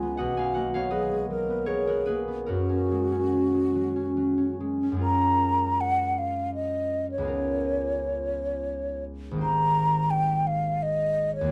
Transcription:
Already playing: C#2 F#3 G#3 F4 C#5 D#5 F#5 G#5
0.02 B3
0.17 B1 F#4 D#5 F#5
0.37 B3 F5 G#5
0.54 A#3 D#5 F#5
0.74 B3 C#5 F5
0.91 F#3 G#4 B4 D#5
1.12 G#3
1.30 F#3 A#4
1.50 B3
1.66 F#3 G#4 A#4 C#5
1.87 B3 F#4 A#4
2.06 A#3 G#4 B4
2.28 B3
2.46 F#2 F#4 A#4
2.69 C#4
2.91 G#3
3.12 C#4
3.33 F#3
3.54 G#3
3.75 F#3
3.96 C#4
4.17 F#3
4.38 C#4
4.60 G#3
4.83 C#4
4.92 F#2 G#3
4.96 C#4 F4
5.01 A#4 A#5
5.81 F#5
6.18 F5
6.55 D#5
7.12 C#5
7.18 C#2 B3
7.22 D#4 F4
7.27 A#4
9.31 G#1 A#3
9.36 D#4 G4
9.41 C5 A#5
10.10 G5
10.47 F5
10.82 D#5
11.36 C#5
11.41 D#2 A#3
11.46 F4 G4

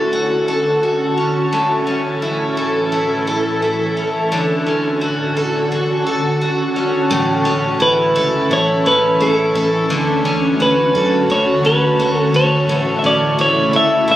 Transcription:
Already playing: D2 D3 C#4 F#4 A4
0.13 F#4
0.48 A4
0.83 F#4
1.18 C#4
1.53 A2 E3 A4
1.87 C#4
2.22 E4
2.57 A4
2.92 E4
3.27 A4
3.62 E4
3.97 C#4
4.32 D2 D3 F#4
4.66 C#4
5.01 F#4
5.37 A4
5.72 F#4
6.07 A4
6.41 F#4
6.76 C#4
7.11 A1 A2 E3 A3 C#4
7.45 A1 C#4
7.80 A1 E4 B4
8.15 C#2 A4
8.50 A1 E4 C#5
8.85 A1 C#4 B4
9.20 A1 E4 A4
9.55 A1 A4
9.90 D2 D3 F#4
10.25 D2 C#4
10.60 D2 F#4 B4
10.94 F#2 A4
11.29 D2 F#4 C#5
11.64 D2 C#4 B4
11.99 D2 F#4
12.19 A4
12.33 D2 A4 C#5
12.68 A1 A2 C#3 E4
12.99 E5
13.03 A1 C#4 D5
13.38 A1 E4 C#5
13.73 C#2 A4 E5
14.08 A1 E4 E5

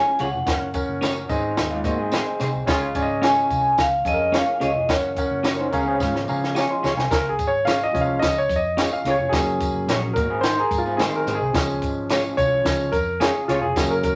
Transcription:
Already playing: C#4 G#4 G#5
0.19 C#2 C#4 F4 G#4 C#5 F#5, closed hi-hat, tambourine
0.35 F1
0.46 C#4 A#4 F#5, kick, snare, closed hi-hat, tambourine
0.74 C#4 A#4 F#5, kick, closed hi-hat, tambourine
0.89 F#1
1.01 C#4 F#4 A#4 C#5, snare, closed hi-hat, tambourine
1.29 G#1 G#2 C4 G#4 D#5, kick, closed hi-hat, tambourine
1.57 D#2, snare, closed hi-hat, tambourine
1.70 G#3 F4
1.84 G#2 A#3 C4 F#4 G#4 D#5, kick, closed hi-hat, tambourine
1.98 C4 G#4
2.12 C4 D#4 G#4 C5, snare, closed hi-hat, tambourine
2.40 C3 C4 D#4 G#4 C5, snare, closed hi-hat, tambourine
2.54 C2
2.66 C#2 C#3 G#3 C#4 F4 G#4 F5, kick, snare, closed hi-hat, tambourine
2.95 G#1 C#4 G#4 D5, kick, closed hi-hat, tambourine
3.02 D#5
3.22 C#4 F4 G#4 C#5 G#5, snare, closed hi-hat, tambourine
3.50 C2, kick, closed hi-hat, tambourine
3.78 C#2 F5, kick, snare, closed hi-hat, tambourine
4.05 F2 C#4 G#4 A4 D#5, kick, closed hi-hat, tambourine
4.13 A#4
4.32 C#4 F4 G#4 C#5 F5, snare, closed hi-hat, tambourine
4.60 C#2 C#4 F4 G#4 C#5 D#5, closed hi-hat, tambourine
4.76 F1
4.89 F#1 C#4 A#4 C#5 F#5, kick, snare, closed hi-hat, tambourine
5.16 C#4 A#4 F#5, kick, closed hi-hat, tambourine
5.31 F#1
5.43 C#4 F#4 A#4 C#5, snare, closed hi-hat, tambourine
5.59 D#4 C5
5.71 C#2 C#3 C#4 G#4 A#4 F5, kick, closed hi-hat, tambourine
5.86 C4 G#4
6.00 G#1 G#3 F4, kick, snare, tambourine
6.13 F3 C#4, snare
6.28 C#3 C#4 G#4 F5 A#5, tambourine
6.44 snare
6.55 C#4 F4 G#4 C#5 G#5 A#5, snare, tambourine
6.71 D#5 C6
6.83 C#2 C#4 F4 G#4 C#5 F5 C#6, snare, tambourine
6.97 C2 C5 G#5, snare
7.11 C#2 A#4, kick, snare, closed hi-hat, tambourine
7.29 G#4
7.38 G#1, kick, closed hi-hat, tambourine
7.47 C#5
7.65 C#4 F4 G#4 C#5 F5, snare, closed hi-hat, tambourine
7.83 D#5
7.93 C2 F3 G#3 C#4, kick, closed hi-hat, tambourine
8.01 F5
8.19 C#2 D#5, kick, snare, closed hi-hat, tambourine
8.38 C#5
8.49 F2, kick, closed hi-hat, tambourine
8.56 D#5
8.77 C#4 F4 G#4 C#5, snare, closed hi-hat, tambourine
8.93 F5
9.05 C#2 C#4 F4 G#4 C#5, snare, closed hi-hat, tambourine
9.10 C#5
9.19 F1
9.29 F#1 F#3 A#3 C#4 G#4, kick, closed hi-hat, tambourine
9.34 snare
9.60 kick, closed hi-hat, tambourine
9.74 F#1
9.87 A#1 C#4 F#4 A#4 C#5, snare, closed hi-hat, tambourine
10.13 G#1 A#3 F#4 A#4, kick, closed hi-hat, tambourine
10.30 C4 G#4
10.41 D#4 C5, snare, closed hi-hat, tambourine
10.58 G#4 A#4
10.71 G#2, kick, closed hi-hat, tambourine
10.78 F4
10.86 C4 G#4
10.97 D#3 G#3 C4 D#4 G#4, snare, closed hi-hat, tambourine
11.01 C5
11.16 A#4
11.27 G#1 C4 D#4 G#4 C5, closed hi-hat, tambourine
11.35 G#4
11.41 C2
11.53 C#2 F3 G#3 C#4, kick, snare, closed hi-hat, tambourine
11.82 G#1, kick, closed hi-hat, tambourine
12.09 C#4 F4 G#4 C#5, snare, closed hi-hat, tambourine
12.37 C2 C#5, kick, closed hi-hat, tambourine
12.64 C#2 F3 G#3 C#4, kick, snare, closed hi-hat, tambourine
12.92 F2 A#4, kick, closed hi-hat, tambourine
13.20 C#4 F4 G#4 C#5, snare, closed hi-hat, tambourine
13.45 C#2 F4 G#4, closed hi-hat, tambourine
13.49 C#4 F4 G#4 C#5, snare
13.61 F1 G#4
13.76 F#1 F#3 A#3 C#4, kick, snare, closed hi-hat, tambourine
13.90 A#4
14.03 A#4, kick, closed hi-hat, tambourine

